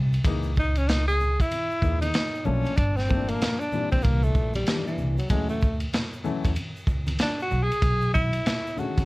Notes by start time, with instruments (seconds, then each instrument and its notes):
Already playing: upright bass C2
0.13 ride, shaker
0.24 upright bass C#2, upright piano E3 G#3 A#3 D#4, kick, ride, shaker
0.43 shaker
0.56 tenor saxophone D#4, kick, shaker
0.76 tenor saxophone C#4, ride, shaker
0.88 tenor saxophone D#4, snare, hi-hat pedal, ride, low conga, shaker
1.08 tenor saxophone G#4, shaker
1.20 low conga, shaker
1.40 tenor saxophone E4, kick, ride, shaker
1.51 ride, high conga, shaker
1.71 shaker
1.82 upright bass D#2, upright piano E3 G#3 A#3 D#4, kick, shaker
2.01 tenor saxophone D#4, ride, high conga, shaker
2.14 snare, hi-hat pedal, ride, shaker
2.35 shaker
2.45 upright bass B1, upright piano F3 A3 A#3 D4, tenor saxophone C#4, low conga, shaker
2.65 ride, shaker
2.77 upright bass G1, tenor saxophone D4, kick, ride, shaker
2.96 tenor saxophone C4, snare, shaker
3.08 upright piano F3 A3 A#3 C4, kick, shaker
3.16 upright piano D4
3.28 tenor saxophone A#3, ride, shaker
3.41 snare, hi-hat pedal, ride, low conga, shaker
3.59 tenor saxophone D4, shaker
3.72 upright piano A#2 E3 G3 C4, low conga, shaker
3.80 upright piano D4
3.91 upright bass A#1, tenor saxophone C4, kick, ride, shaker
4.02 upright bass C2, tenor saxophone A#3, kick, ride, high conga, shaker
4.23 tenor saxophone A3, shaker
4.34 upright bass A#1, kick, shaker
4.53 tenor saxophone G3, ride, high conga, shaker
4.66 upright piano D#3 G3 A#3 D4, snare, hi-hat pedal, ride, shaker
4.73 upright piano E3
4.87 tenor saxophone E3, shaker
4.98 upright bass C2, low conga, shaker
5.17 tenor saxophone F#3, ride, shaker
5.29 upright bass D2, upright piano E3 F#3 A3 C#4, tenor saxophone G#3, kick, ride, shaker
5.49 tenor saxophone A3, shaker
5.61 kick, shaker
5.80 ride, shaker
5.93 snare, hi-hat pedal, ride, low conga, shaker
6.13 shaker
6.24 upright piano E3 F#3 A3 C#4, low conga, shaker
6.44 upright bass E2, kick, ride, shaker
6.56 ride, high conga, shaker
6.76 shaker
6.87 upright bass C#2, kick, shaker
7.07 ride, high conga, shaker
7.19 tenor saxophone D4, snare, hi-hat pedal, ride, shaker
7.40 tenor saxophone F#4, shaker
7.51 upright bass B1, low conga, shaker
7.64 tenor saxophone G#4
7.72 ride, shaker
7.82 upright bass B1, kick, ride, shaker
8.01 shaker
8.14 tenor saxophone E4, kick, high conga, shaker
8.33 ride, shaker
8.46 snare, hi-hat pedal, ride, low conga, shaker
8.67 shaker
8.76 upright piano D3 G#3 A3 C#4, tenor saxophone F#4, low conga, shaker
8.83 upright piano D#3
8.97 upright bass C#2, kick, ride, high conga, shaker